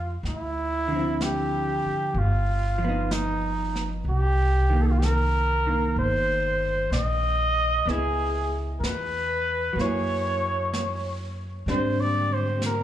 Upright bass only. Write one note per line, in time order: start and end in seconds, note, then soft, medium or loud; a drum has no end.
0.00 0.20 F2 medium
0.23 1.80 D2 medium
1.85 muted upright bass stroke soft
2.14 4.01 G1 medium
4.05 5.91 C2 medium
5.96 6.87 G1 medium
6.90 7.81 A#1 medium
7.86 8.77 C#2 medium
8.80 9.71 E2 medium
9.75 11.62 F#2 medium
11.66 12.83 G#2 medium